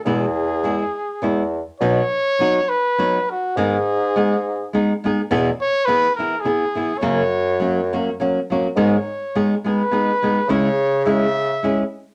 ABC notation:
X:1
M:3/4
L:1/8
Q:"Swing" 1/4=104
K:E
V:1 name="Trumpet"
G4- G z | [K:B] c3 B2 F | G4 z2 | z c B A G2 |
c4 z2 | c3 B3 | c2 e3 z |]
V:2 name="Nylon-string guitar"
[E,,B,,E,G,B,E] z [E,G,B,E] z [E,G,B,E] z | [K:B] [B,,F,B,DF] z [F,B,DF] z [F,B,DF] z | [G,,D,G,B,DG] z [G,B,DG] z [G,B,DG] [G,B,DG] | [E,,B,,E,B,EG] z [E,B,EG] [E,B,EG] [E,B,EG] [E,B,EG] |
[F,,C,F,A,CF] z [F,A,CF] [F,A,CF] [F,A,CF] [F,A,CF] | [G,,D,G,B,DG] z [G,B,DG] [G,B,DG] [G,B,DG] [G,B,DG] | [C,G,CEG] z [G,CEG] z [G,CEG] z |]
V:3 name="Bassoon" clef=bass
E,,4 E,,2 | [K:B] B,, z4 z | G,,6 | E,, z4 z |
F,,6 | G,, z4 z | C,6 |]